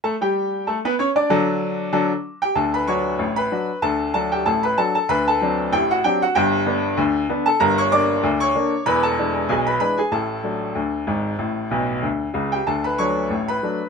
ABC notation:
X:1
M:2/4
L:1/16
Q:"Swing 16ths" 1/4=95
K:D
V:1 name="Upright piano"
[A,Aa] [G,Gg]3 [A,Aa] [B,Bb] [Ccc'] [Ddd']- | [Ddd'] z6 [Gg] | [Aa] [Bb] [cc']3 [Bb]3 | [Aa]2 [Aa] [Gg] [Aa] [Bb] [Aa] [Aa] |
[Bb] [Aa]3 [Gg] [Ff] [Gg] [Ff] | [Gg]4- [Gg] z2 [Aa] | [_B_b] [cc'] [dd']3 [cc']3 | [Bb] [Aa]3 [^G^g] [Bb] [Bb] [Gg] |
[Aa]8- | [Aa]4 z3 [Gg] | [Aa] [Bb] [cc']3 [Bb]3 |]
V:2 name="Upright piano" clef=bass
z8 | [D,F,DA]2 z2 [D,F,DA]2 z2 | [D,,D,]2 [F,DF]2 [A,,,A,,]2 [F,DF]2 | [D,,D,]2 [F,DF]2 [A,,,A,,]2 [F,DF]2 |
[D,,D,]2 [F,=CD]2 [A,,,A,,]2 [F,CD]2 | [G,,,G,,]2 [D,B,D]2 [D,,D,]2 [D,B,D]2 | [G,,,G,,]2 [D,_B,D]2 [D,,D,]2 [D,B,D]2 | [E,,,E,,]2 [E,^G,D]2 [B,,,B,,]2 [E,G,D]2 |
[A,,,A,,]2 [F,A,D]2 [D,,D,]2 [^G,,,^G,,]2 | [A,,,A,,]2 [B,,,B,,]2 [D,,D,]2 [C,,C,]2 | [D,,D,]2 [F,A,D]2 [A,,,A,,]2 [F,A,D]2 |]